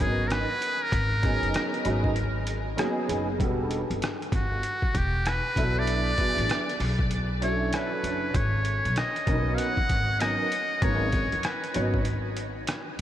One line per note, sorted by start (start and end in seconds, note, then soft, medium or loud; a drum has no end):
0.00 0.44 G#1 medium
0.00 0.46 F#3 medium
0.00 0.46 B3 medium
0.00 0.46 C#4 soft
0.00 0.47 D#4 medium
0.00 0.29 G#4 medium
0.00 0.47 A#4 medium
0.00 kick medium
0.00 closed hi-hat medium
0.27 0.34 A#4 medium
0.27 closed hi-hat medium
0.32 0.84 B4 loud
0.32 cross-stick medium
0.62 closed hi-hat medium
0.83 2.06 A#4 loud
0.92 1.36 G#1 loud
0.92 kick loud
0.92 closed hi-hat medium
1.22 1.82 F#3 medium
1.22 1.83 B3 medium
1.22 1.84 C#4 medium
1.22 1.85 D#4 medium
1.22 1.85 G#4 medium
1.22 kick medium
1.22 cross-stick soft
1.22 closed hi-hat medium
1.43 1.53 F#1 medium
1.43 closed hi-hat soft
1.54 cross-stick loud
1.54 closed hi-hat medium
1.74 closed hi-hat soft
1.84 2.74 G#1 medium
1.84 2.09 F#3 medium
1.84 2.09 B3 medium
1.84 2.09 C#4 medium
1.84 2.10 D#4 medium
1.84 2.10 G#4 medium
1.84 closed hi-hat medium
2.04 kick medium
2.16 closed hi-hat medium
2.47 closed hi-hat medium
2.76 3.24 F#3 medium
2.76 2.86 A#3 medium
2.76 3.24 C#4 medium
2.76 3.25 D#4 medium
2.76 3.25 G#4 loud
2.76 cross-stick loud
2.76 closed hi-hat medium
2.83 3.27 B3 medium
3.09 3.40 F#1 medium
3.09 closed hi-hat medium
3.38 3.84 E1 loud
3.38 3.78 G3 medium
3.38 3.78 B3 medium
3.38 3.78 D4 medium
3.38 3.79 F#4 medium
3.38 3.79 A4 medium
3.38 kick loud
3.38 closed hi-hat medium
3.71 closed hi-hat medium
3.90 4.00 G1 medium
3.90 closed hi-hat soft
4.02 cross-stick loud
4.02 closed hi-hat medium
4.22 closed hi-hat soft
4.32 4.60 G1 medium
4.32 4.99 F#4 medium
4.32 kick medium
4.32 closed hi-hat medium
4.63 closed hi-hat medium
4.82 muted upright bass stroke soft
4.82 kick medium
4.95 5.39 E1 medium
4.95 5.30 G4 medium
4.95 kick medium
4.95 closed hi-hat medium
5.26 5.80 B4 medium
5.26 cross-stick medium
5.26 closed hi-hat medium
5.55 6.11 B1 medium
5.55 6.08 F#3 medium
5.55 6.09 B3 medium
5.55 6.09 D4 medium
5.55 6.09 E4 medium
5.55 6.10 A4 medium
5.55 kick loud
5.55 closed hi-hat medium
5.79 7.01 D5 loud
5.87 closed hi-hat medium
6.17 6.64 F#3 medium
6.17 6.64 B3 medium
6.17 6.65 D4 soft
6.17 6.65 E4 soft
6.17 6.65 G#4 medium
6.17 kick medium
6.17 closed hi-hat medium
6.37 6.48 A1 medium
6.37 closed hi-hat soft
6.50 cross-stick loud
6.50 closed hi-hat medium
6.69 closed hi-hat soft
6.80 7.69 B1 medium
6.80 open hi-hat medium
6.99 kick medium
7.11 closed hi-hat medium
7.41 8.30 F#3 medium
7.41 8.30 C#4 medium
7.41 8.30 D4 medium
7.41 8.31 E4 medium
7.41 8.31 A4 medium
7.41 7.76 C#5 medium
7.41 closed hi-hat medium
7.73 8.38 B4 medium
7.73 cross-stick medium
7.73 closed hi-hat medium
8.03 8.31 F#1 medium
8.03 closed hi-hat medium
8.34 8.79 G#1 medium
8.34 8.99 C#5 medium
8.34 kick loud
8.34 closed hi-hat medium
8.65 closed hi-hat medium
8.85 8.95 B1 medium
8.85 closed hi-hat soft
8.96 9.56 D#5 medium
8.96 cross-stick medium
8.96 closed hi-hat medium
9.16 closed hi-hat soft
9.26 9.54 B1 loud
9.26 9.73 F#3 medium
9.26 9.35 A#3 medium
9.26 9.74 C#4 medium
9.26 9.74 D#4 medium
9.26 9.75 A#4 medium
9.26 kick medium
9.26 closed hi-hat medium
9.33 9.77 B3 medium
9.55 9.60 F5 medium
9.55 10.22 F#5 loud
9.55 closed hi-hat medium
9.77 muted upright bass stroke soft
9.77 kick medium
9.89 10.34 G#1 medium
9.89 kick medium
9.89 closed hi-hat medium
10.19 10.44 F#3 medium
10.19 10.44 B3 medium
10.19 10.44 C#4 medium
10.19 10.45 D#4 medium
10.19 10.45 A#4 medium
10.19 10.85 D#5 medium
10.19 cross-stick medium
10.19 closed hi-hat medium
10.52 closed hi-hat medium
10.81 11.26 G#1 loud
10.81 11.06 F#3 medium
10.81 11.06 B3 medium
10.81 11.06 C#4 medium
10.81 11.07 D#4 medium
10.81 11.07 A#4 medium
10.81 11.47 C#5 medium
10.81 kick loud
10.81 closed hi-hat medium
11.12 kick medium
11.12 cross-stick soft
11.12 closed hi-hat medium
11.32 11.43 F#1 medium
11.32 closed hi-hat soft
11.43 12.07 B4 medium
11.43 cross-stick loud
11.43 closed hi-hat medium
11.64 closed hi-hat soft
11.74 12.64 G#1 medium
11.74 11.98 F#3 medium
11.74 11.99 B3 medium
11.74 11.99 C#4 medium
11.74 11.99 D#4 medium
11.74 12.00 C#5 medium
11.74 closed hi-hat medium
11.94 kick medium
12.05 closed hi-hat medium
12.37 closed hi-hat medium
12.67 cross-stick medium
12.67 closed hi-hat medium